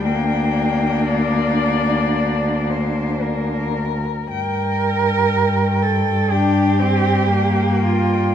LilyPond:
<<
  \new Staff \with { instrumentName = "Cello" } { \time 4/4 \key g \minor \tempo 4 = 57 g''16 g''16 g''16 g''16 d''4. c''8 bes'4 | g''16 g''16 g''16 g''16 g''16 g''16 g''16 g''16 g''16 g''16 g''16 g''16 g''16 g''16 g''16 g''16 | }
  \new Staff \with { instrumentName = "Cello" } { \time 4/4 \key g \minor d'2.~ d'8 r8 | bes'4. a'8 g'4. f'8 | }
  \new Staff \with { instrumentName = "Cello" } { \time 4/4 \key g \minor bes2.~ bes8 r8 | r2 d'8 c'8 bes4 | }
  \new Staff \with { instrumentName = "Cello" } { \clef bass \time 4/4 \key g \minor d,1 | g,1 | }
>>